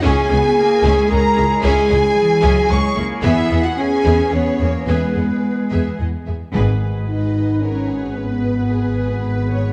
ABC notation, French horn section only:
X:1
M:3/4
L:1/16
Q:1/4=111
K:G#m
V:1 name="French horn section"
G8 A4 | G8 c2 z2 | E3 F G4 C4 | B,8 z4 |
G,4 D4 C4 | B,12 |]